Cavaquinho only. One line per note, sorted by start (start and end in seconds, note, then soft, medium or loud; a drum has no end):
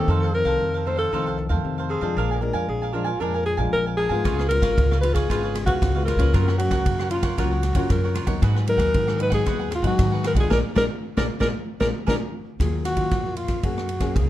0.08 0.21 D#4 medium
0.08 0.21 A4 medium
0.08 0.22 C5 medium
0.08 0.22 F5 medium
0.23 0.33 A4 soft
0.23 0.33 C5 soft
0.23 0.34 F5 soft
0.34 muted cavaquinho stroke soft
0.45 0.73 A4 medium
0.45 0.72 C5 medium
0.45 0.72 F5 medium
0.74 0.85 A4 soft
0.74 0.86 C5 soft
0.74 0.86 F5 soft
0.86 0.98 D#4 soft
0.86 0.98 A4 soft
0.86 0.97 C5 soft
0.86 0.96 F5 soft
0.97 1.12 A4 medium
0.97 1.11 C5 medium
0.97 1.11 F5 medium
1.13 1.25 D#4 medium
1.13 1.25 A4 medium
1.13 1.26 C5 medium
1.13 1.25 F5 medium
1.26 1.37 A4 soft
1.26 1.38 C5 soft
1.26 1.38 F5 soft
1.38 muted cavaquinho stroke soft
1.49 1.77 A4 medium
1.49 1.76 C5 medium
1.49 1.76 F5 medium
1.78 1.89 A4 soft
1.78 1.89 C5 soft
1.78 1.90 F5 soft
1.89 2.02 D#4 soft
1.89 2.02 A4 soft
1.89 2.01 C5 medium
1.89 2.00 F5 soft
2.01 2.16 A4 medium
2.01 2.15 C5 medium
2.01 2.15 F5 medium
2.17 2.29 D4 medium
2.17 2.30 A#4 medium
2.17 2.30 F5 medium
2.17 2.30 G#5 medium
2.31 2.40 A#4 soft
2.31 2.41 F5 soft
2.31 2.41 G#5 soft
2.41 muted cavaquinho stroke soft
2.53 2.81 A#4 medium
2.53 2.80 F5 medium
2.53 2.80 G#5 medium
2.82 2.92 A#4 soft
2.82 2.93 F5 soft
2.82 2.94 G#5 soft
2.93 3.06 D4 soft
2.93 3.05 A#4 soft
2.93 3.05 F5 medium
2.93 3.03 G#5 medium
3.04 3.19 A#4 soft
3.04 3.19 F5 medium
3.04 3.18 G#5 medium
3.20 3.33 D4 medium
3.20 3.33 A#4 medium
3.20 3.34 F5 medium
3.20 3.33 G#5 medium
3.34 3.44 A#4 soft
3.34 3.45 F5 soft
3.34 3.45 G#5 soft
3.45 muted cavaquinho stroke soft
3.57 3.85 A#4 medium
3.57 3.84 F5 medium
3.57 3.84 G#5 medium
3.86 3.97 A#4 soft
3.86 3.98 F5 soft
3.86 3.98 G#5 soft
3.98 4.11 D4 soft
3.98 4.10 A#4 soft
3.98 4.09 F5 soft
3.98 4.08 G#5 medium
4.09 4.24 A#4 medium
4.09 4.23 F5 medium
4.09 4.23 G#5 medium
4.24 4.37 F4 medium
4.24 4.37 B4 medium
4.24 4.38 C#5 medium
4.24 4.37 F5 medium
4.38 4.49 B4 soft
4.38 4.49 C#5 soft
4.38 4.50 F5 soft
4.50 muted cavaquinho stroke soft
4.62 4.89 B4 medium
4.62 4.89 C#5 medium
4.62 4.88 F5 medium
4.91 5.02 B4 soft
4.91 5.03 C#5 soft
4.91 5.03 F5 soft
5.03 5.15 F4 soft
5.03 5.15 B4 soft
5.03 5.14 C#5 soft
5.03 5.13 F5 medium
5.14 5.28 B4 medium
5.14 5.28 C#5 medium
5.14 5.28 F5 medium
5.29 5.42 F4 medium
5.29 5.42 B4 medium
5.29 5.42 C#5 medium
5.29 5.42 F5 medium
5.43 5.55 B4 soft
5.43 5.55 C#5 soft
5.43 5.55 F5 medium
5.55 muted cavaquinho stroke soft
5.66 5.93 B4 medium
5.66 5.93 C#5 medium
5.66 5.93 F5 medium
5.95 6.06 B4 soft
5.95 6.07 C#5 soft
5.95 6.07 F5 soft
6.06 6.19 F4 soft
6.06 6.20 B4 soft
6.06 6.19 C#5 soft
6.06 6.18 F5 soft
6.19 6.33 B4 medium
6.19 6.32 C#5 medium
6.19 6.32 F5 medium
6.33 6.46 F4 medium
6.33 6.46 A#4 medium
6.33 6.46 C#5 medium
6.33 6.46 F#5 medium
6.48 6.59 A#4 soft
6.48 6.60 C#5 soft
6.48 6.59 F#5 medium
6.60 muted cavaquinho stroke soft
6.71 6.98 A#4 medium
6.71 6.98 C#5 medium
6.71 6.97 F#5 medium
7.00 7.11 A#4 soft
7.00 7.12 C#5 soft
7.00 7.12 F#5 soft
7.12 7.24 F4 soft
7.12 7.24 A#4 medium
7.12 7.23 C#5 soft
7.12 7.21 F#5 medium
7.23 7.37 A#4 medium
7.23 7.37 C#5 medium
7.23 7.36 F#5 medium
7.37 7.50 F4 medium
7.37 7.50 A#4 medium
7.37 7.51 C#5 medium
7.37 7.50 F#5 medium
7.51 7.63 A#4 soft
7.51 7.63 C#5 soft
7.51 7.63 F#5 soft
7.63 muted cavaquinho stroke soft
7.75 8.02 A#4 soft
7.75 8.02 C#5 medium
7.75 8.01 F#5 medium
8.04 8.14 A#4 soft
8.04 8.15 C#5 soft
8.04 8.16 F#5 medium
8.14 8.27 F4 soft
8.14 8.27 A#4 medium
8.14 8.27 C#5 medium
8.14 8.25 F#5 medium
8.27 8.41 A#4 medium
8.27 8.41 C#5 medium
8.27 8.40 F#5 medium
8.42 8.54 F#4 medium
8.42 8.55 G#4 medium
8.42 8.55 B4 medium
8.42 8.54 F#5 medium
8.55 8.66 G#4 soft
8.55 8.66 B4 soft
8.55 8.66 F#5 medium
8.67 muted cavaquinho stroke soft
8.78 9.06 G#4 medium
8.78 9.05 B4 medium
8.78 9.05 F#5 medium
9.07 9.18 G#4 soft
9.07 9.18 B4 soft
9.07 9.19 F#5 soft
9.18 9.31 F#4 soft
9.18 9.31 G#4 medium
9.18 9.30 B4 medium
9.18 9.29 F#5 medium
9.30 9.45 G#4 medium
9.30 9.45 B4 medium
9.30 9.44 F#5 medium
9.46 9.58 F#4 medium
9.46 9.59 G#4 medium
9.46 9.59 B4 medium
9.46 9.58 F#5 medium
9.59 9.70 G#4 soft
9.59 9.70 B4 soft
9.59 9.70 F#5 medium
9.70 muted cavaquinho stroke soft
9.83 10.10 G#4 medium
9.83 10.10 B4 medium
9.83 10.09 F#5 medium
10.12 10.23 G#4 soft
10.12 10.24 B4 soft
10.12 10.24 F#5 medium
10.23 10.36 F#4 soft
10.23 10.36 G#4 soft
10.23 10.35 B4 medium
10.23 10.34 F#5 soft
10.35 10.49 G#4 medium
10.35 10.49 B4 medium
10.35 10.49 F#5 medium
10.50 10.59 G#4 medium
10.50 10.59 A#4 medium
10.50 10.59 D5 medium
10.75 10.85 G#4 medium
10.75 10.85 A#4 medium
10.75 10.85 D5 medium
11.17 11.25 G#4 medium
11.17 11.25 A#4 medium
11.17 11.25 D5 loud
11.40 11.50 G#4 medium
11.40 11.50 A#4 medium
11.40 11.49 D5 medium
11.80 11.89 G#4 medium
11.80 11.89 A#4 medium
11.80 11.89 D5 medium
12.07 12.16 G#4 medium
12.07 12.16 A#4 medium
12.07 12.16 D5 medium